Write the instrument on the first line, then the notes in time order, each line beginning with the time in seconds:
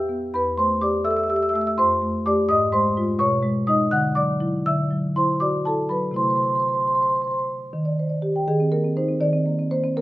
marimba
Already playing: E2 G4 E5 E6
0.09 B3
0.34 E2 B4 B5
0.58 A3 C5 C6
0.81 G4 D5 D6
1.05 A4 E5 E6
1.11 E5 E6
1.17 E5 E6
1.23 E5 E6
1.30 G4 E6
1.34 E5 E6
1.42 E5 E6
1.49 E5 E6
1.54 A3 E6
1.58 E5 E6
1.66 E5 E6
1.78 F2 C5 C6
2.02 A3
2.26 A3 G4 D5 D6
2.49 G#2 D#5 D#6
2.72 G#3 C5 C6
2.97 G#3 F4
3.19 B2 C#5 C#6
3.43 G#3
3.67 G#3 D#4 D#5 D#6
3.91 D3 F#5 F#6
4.15 F#3 D5 D6
4.40 F#3 E4
4.66 D3 E5 E6
4.91 F#3
5.16 E4 C5 C6
5.40 F#4 D5 D6
5.65 E4 A4 A5
5.89 F#3 B4 B5
6.11 C3 A3 E4
6.16 C5 C6
6.23 C5 C6
6.29 C5 C6
6.36 C5 C6
6.43 C5 C6
6.49 C5 C6
6.55 C6
6.60 C5 C6
6.66 C5 C6
6.73 C5 C6
6.80 C5 C6
6.87 C5 C6
6.95 C5 C6
7.02 C5 C6
7.09 C5 C6
7.15 C5 C6
7.22 C5 C6
7.28 C5 C6
7.34 C6
7.39 C5
7.73 D#3
7.85 D5
7.99 C5
8.09 D5
8.22 G4
8.36 G5
8.48 D#3 G#4
8.60 C4
8.72 A#3 A#4
8.84 C4
8.97 D#4 C5
9.09 C4
9.21 D#3 D5
9.33 C4
9.46 A#3
9.59 C4
9.71 A#3 C5
9.84 C4
9.97 A#3 A#4